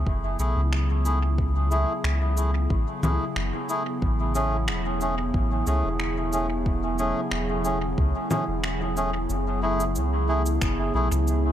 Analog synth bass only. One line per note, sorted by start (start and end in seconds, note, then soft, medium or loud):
0.07 0.36 F#1 loud
0.39 0.55 B1 medium
0.57 1.85 C#2 loud
2.04 2.67 C#2 medium
2.70 2.86 A1 medium
3.03 3.18 C#2 medium
3.36 3.52 F#1 loud
4.02 4.70 A1 loud
4.68 5.31 E1 medium
5.34 5.63 A1 loud
5.67 5.82 C#2 medium
5.84 7.13 E1 medium
7.31 7.95 E1 medium
7.98 8.13 C#2 medium
8.48 9.27 E1 medium
9.30 9.97 F#1 loud
9.96 10.59 C#2 medium
10.62 10.91 F#1 loud
10.94 11.10 B1 medium
11.12 11.52 C#2 medium